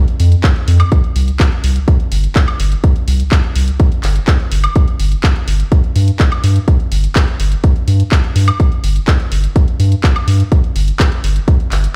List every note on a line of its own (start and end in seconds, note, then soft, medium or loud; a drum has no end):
0.08 closed hi-hat soft
0.20 0.35 F2 medium
0.20 open hi-hat loud
0.32 closed hi-hat medium
0.44 kick loud
0.44 clap loud
0.44 closed hi-hat medium
0.56 closed hi-hat soft
0.68 0.83 F2 loud
0.68 open hi-hat loud
0.80 closed hi-hat medium
0.80 high woodblock medium
0.92 kick loud
0.92 closed hi-hat medium
1.04 closed hi-hat soft
1.16 1.31 C2 loud
1.16 open hi-hat loud
1.28 closed hi-hat medium
1.40 kick loud
1.40 clap loud
1.40 closed hi-hat soft
1.52 closed hi-hat soft
1.64 1.79 C2 medium
1.64 open hi-hat loud
1.76 closed hi-hat medium
1.88 kick loud
1.88 closed hi-hat medium
2.00 closed hi-hat soft
2.12 2.27 G1 medium
2.12 open hi-hat loud
2.24 closed hi-hat medium
2.36 kick loud
2.36 clap loud
2.36 closed hi-hat soft
2.48 closed hi-hat soft
2.48 high woodblock medium
2.60 2.75 G1 medium
2.60 open hi-hat loud
2.72 closed hi-hat soft
2.84 kick loud
2.84 closed hi-hat soft
2.96 closed hi-hat soft
3.08 3.23 C2 loud
3.08 open hi-hat loud
3.20 closed hi-hat medium
3.32 kick loud
3.32 clap loud
3.32 closed hi-hat soft
3.44 closed hi-hat soft
3.56 3.71 C2 medium
3.56 open hi-hat loud
3.68 closed hi-hat soft
3.80 kick loud
3.80 closed hi-hat medium
3.92 closed hi-hat soft
4.03 4.19 G1 medium
4.03 clap medium
4.03 open hi-hat loud
4.16 closed hi-hat medium
4.27 kick loud
4.27 clap loud
4.27 closed hi-hat soft
4.40 closed hi-hat soft
4.52 4.67 G1 medium
4.52 open hi-hat loud
4.64 closed hi-hat soft
4.64 high woodblock medium
4.75 kick loud
4.75 closed hi-hat soft
4.88 closed hi-hat soft
5.00 5.15 G1 loud
5.00 open hi-hat loud
5.12 closed hi-hat medium
5.23 kick loud
5.23 clap loud
5.23 closed hi-hat medium
5.36 closed hi-hat soft
5.48 5.63 G1 medium
5.48 open hi-hat loud
5.60 closed hi-hat soft
5.72 kick loud
5.72 closed hi-hat soft
5.84 closed hi-hat soft
5.96 6.11 G2 medium
5.96 open hi-hat loud
6.08 closed hi-hat medium
6.20 kick loud
6.20 clap loud
6.20 closed hi-hat soft
6.32 closed hi-hat soft
6.32 high woodblock medium
6.44 6.59 G2 medium
6.44 open hi-hat loud
6.56 closed hi-hat soft
6.68 kick loud
6.68 closed hi-hat medium
6.80 closed hi-hat soft
6.92 7.07 G1 loud
6.92 open hi-hat loud
7.04 closed hi-hat medium
7.16 kick loud
7.16 clap loud
7.16 closed hi-hat medium
7.28 closed hi-hat soft
7.40 7.55 G1 medium
7.40 open hi-hat loud
7.52 closed hi-hat medium
7.64 kick loud
7.64 closed hi-hat medium
7.76 closed hi-hat soft
7.88 8.03 G2 medium
7.88 open hi-hat loud
8.00 closed hi-hat medium
8.12 kick loud
8.12 clap loud
8.12 closed hi-hat medium
8.24 closed hi-hat soft
8.36 8.51 G2 medium
8.36 open hi-hat loud
8.48 closed hi-hat medium
8.48 high woodblock medium
8.60 kick loud
8.60 closed hi-hat medium
8.72 closed hi-hat soft
8.84 8.99 G1 loud
8.84 open hi-hat loud
8.96 closed hi-hat medium
9.08 kick loud
9.08 clap loud
9.08 closed hi-hat medium
9.20 closed hi-hat soft
9.32 9.47 G1 medium
9.32 open hi-hat loud
9.44 closed hi-hat medium
9.56 kick loud
9.56 closed hi-hat medium
9.68 closed hi-hat soft
9.80 9.95 G2 loud
9.80 open hi-hat loud
9.92 closed hi-hat medium
10.04 kick loud
10.04 clap loud
10.04 closed hi-hat medium
10.16 closed hi-hat soft
10.16 high woodblock medium
10.28 10.43 G2 loud
10.28 open hi-hat loud
10.40 closed hi-hat medium
10.52 kick loud
10.52 closed hi-hat medium
10.64 closed hi-hat soft
10.76 10.91 G1 loud
10.76 open hi-hat loud
10.88 closed hi-hat medium
11.00 kick loud
11.00 clap loud
11.00 closed hi-hat medium
11.12 closed hi-hat soft
11.24 11.39 G1 medium
11.24 open hi-hat loud
11.36 closed hi-hat medium
11.48 kick loud
11.48 closed hi-hat medium
11.60 closed hi-hat soft
11.72 11.87 G1 medium
11.72 clap medium
11.72 open hi-hat loud
11.84 closed hi-hat medium